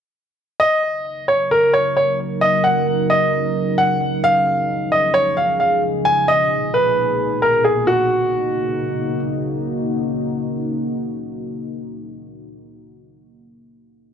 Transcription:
0.60 C#3 F#3 D#4 A#4 D#5
1.28 C#5
1.51 A#4
1.74 C#5
1.97 C#5
2.41 D#5
2.64 F#5
3.10 D#5
3.78 F#5
4.24 F3 G#4 F5
4.92 D#5
5.14 C#5
5.37 F5
5.60 F5
6.05 A#2 B2 G#5
6.28 D#5
6.74 B4
7.42 A#4
7.64 G#4
7.87 C#3 A#3 D#4 F#4

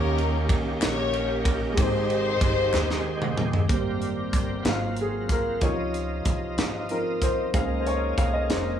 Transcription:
Already playing: D#2 D#3 A#3 C#4 D#4 G4 A#4 C#5
0.18 ride
0.49 C#2, kick, ride
0.82 A#1 G4 A#4 C#5, snare, clap, ride
1.13 ride
1.45 kick, ride
1.73 C3 G#3 C4 D#4, kick, ride
1.78 G#1 D#3 D#4 G4 C5
2.10 ride
2.41 G1, kick, ride
2.73 D#2, snare, clap
2.91 snare
3.22 mid tom
3.38 mid tom
3.53 floor tom
3.68 G#1 G3 A#3 C4 G4 A#4, kick, closed hi-hat
4.02 closed hi-hat
4.33 G1, kick, closed hi-hat
4.62 G#1 F#3 A#3 B3 F4 A#4, snare, closed hi-hat
4.66 C4 F4 F5
4.97 closed hi-hat
5.01 G#4
5.29 A#4, kick, closed hi-hat
5.60 C#2 C3 E3 F3 D#4 F4 C#5 D#5, kick, closed hi-hat
5.66 F3
5.94 closed hi-hat
6.25 C2, kick, closed hi-hat
6.58 G#1, snare, closed hi-hat
6.89 F3 C4 D#4 A#4, closed hi-hat
7.22 C5, kick, closed hi-hat
7.53 C#2 G#3 A#3 C#4 D#4 B4 C5 F5, kick, closed hi-hat
7.60 A#4
7.80 C5
7.87 C#5, closed hi-hat
8.18 C2 F5, kick, closed hi-hat
8.34 D#5
8.49 F1 G#3 C4 C#4 D#4 C5, snare, closed hi-hat

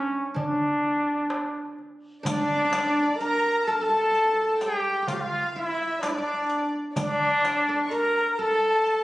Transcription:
Already playing: C#4
0.34 D4, darbuka dum
1.30 darbuka tek
1.54 darbuka ka
1.79 darbuka ka
2.23 D4 D5, riq, darbuka dum
2.33 D4
2.40 D4
2.48 D4
2.56 D4
2.65 D4
2.71 D4, riq, darbuka tek
2.80 D4
2.87 D4
2.96 D4
3.03 D4
3.17 A#4 A#5, riq
3.67 A4 A5
3.72 A#4
3.81 A4 A5
3.89 A4
3.96 A4
4.04 A4
4.11 A4, riq, darbuka ka
4.19 A4
4.25 A4
4.33 A4
4.41 A4
4.49 A4
4.61 G4 G5, riq, darbuka tek
5.02 G4
5.07 F4 F5, riq, darbuka dum
5.13 G4
5.21 F4 F5
5.54 E4 F4 E5, darbuka ka
5.65 E4
6.01 D4 D5, riq, darbuka tek
6.09 E4
6.15 D4 D5
6.49 riq
6.96 D4 D5, riq, darbuka dum
7.44 riq, darbuka tek
7.69 A4
7.84 C#6
7.90 A#4 A#5, riq
8.30 A#5
8.38 A4 A5
8.86 riq, darbuka ka

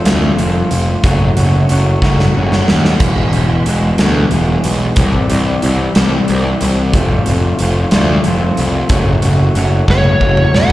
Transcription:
0.05 D2 F2 C3 F3 A3 C4 F4, snare, closed hi-hat
0.37 F1 F3 A3 C4 F4, closed hi-hat
0.71 F1, closed hi-hat
1.03 F#1 F#2 C#3 F#3 A3 C#4 F#4, kick, closed hi-hat
1.37 F#1 F#3 A3 C#4 F#4, closed hi-hat
1.69 F#1 F#3 A3 C#4 F#4, closed hi-hat
2.02 F#1 F#2 C#3 F#3 A3 C#4 F#4, kick, snare
2.19 snare
2.35 F#1 F#3 A3 C#4 F#4
2.52 snare
2.68 D#2, snare
2.85 snare
3.00 E1 E2 B2 E3 G#3 B3 G#4, kick, closed hi-hat, crash
3.33 E1 E3 G#3 B3 G#4, closed hi-hat
3.66 E1 E3 G#3 B3 G#4, closed hi-hat
3.98 D2 E2 B2 E3 G#3 B3 G#4, snare, closed hi-hat
4.31 E1 E3 G#3 B3 G#4, closed hi-hat
4.64 B1, closed hi-hat
4.96 C2 C3 E3 G3 C4 G4, kick, closed hi-hat
5.29 C2 G3 C4 G4, closed hi-hat
5.62 C2 E3 G3 C4 G4, closed hi-hat
5.95 C2 C3 E3 G3 C4 G4, snare, closed hi-hat
6.28 C2 E3 G3 C4 G4, closed hi-hat
6.61 C2, closed hi-hat
6.94 F1 F2 C3 F3 A3 C4 F4, kick, closed hi-hat
7.26 F1 A3 C4 F4, closed hi-hat
7.30 F3
7.59 F1 F3 A3 C4 F4, closed hi-hat
7.91 D2 F2 C3 F3 A3 C4 F4, snare, closed hi-hat
8.24 F1 F3 A3 C4 F4, closed hi-hat
8.57 C2, closed hi-hat
8.89 F#1 F#2 C#3 F#3 A3 C#4 F#4, kick, closed hi-hat
9.22 F#1 F#3 A3 C#4 F#4, closed hi-hat
9.54 F#1 F#3 A3 C#4 F#4, closed hi-hat
9.88 F#1 F#2 C#3 F#3 A3 C#4 F#4 C#5, kick, snare
10.04 high tom
10.19 F#1 F#3 A3 C#4 F#4, kick
10.37 mid tom
10.54 B1 F#5, snare

